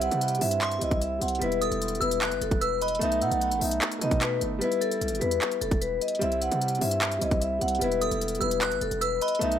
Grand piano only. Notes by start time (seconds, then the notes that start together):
Already playing: G3 C4 E4
0.39 G3 C4
0.44 E4
0.79 G3 C4
0.84 E4
1.19 G3 C4
1.24 E4
1.39 G3 B3
1.44 E4
1.99 G3 B3
2.04 E4
2.99 A3 B3
3.04 D#4
3.59 A3 B3
3.64 D#4
3.99 A3 B3
4.04 D#4
4.39 A3 B3
4.44 D#4
4.59 G3 B3
4.64 E4
5.19 G3 B3
5.24 E4
6.19 G3 C4
6.24 E4
6.79 G3 C4
6.84 E4
7.19 G3 C4
7.24 E4
7.59 G3 C4
7.64 E4
7.79 G3 B3
7.84 E4
8.39 G3 B3
8.44 E4
9.39 A3 B3
9.44 D#4